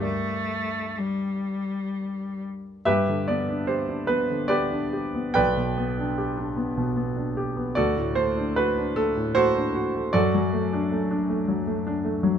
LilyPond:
<<
  \new Staff \with { instrumentName = "Grand piano" } { \time 3/4 \key g \minor \tempo 4 = 75 r2. | \key g \major <g' b' e''>8 d''8 c''8 b'8 <g' b' d''>4 | <b' d'' g''>2. | <fis' a' d''>8 c''8 b'8 a'8 <fis' a' c''>4 |
<fis' a' d''>2. | }
  \new Staff \with { instrumentName = "Grand piano" } { \time 3/4 \key g \minor <g, g' bes' d''>2. | \key g \major g,16 d16 b16 d'16 g'16 d'16 b16 d16 b16 d'16 g'16 b16 | b,,16 b,16 b16 d'16 g'16 d'16 b16 b,16 b16 d'16 g'16 b16 | d,16 a,16 a16 d'16 fis'16 d'16 a16 a,16 a16 d'16 fis'16 a16 |
fis,16 fis16 a16 d'16 a16 d'16 a16 fis16 a16 d'16 a16 fis16 | }
  \new Staff \with { instrumentName = "Cello" } { \clef bass \time 3/4 \key g \minor a4 g4. r8 | \key g \major r2. | r2. | r2. |
r2. | }
>>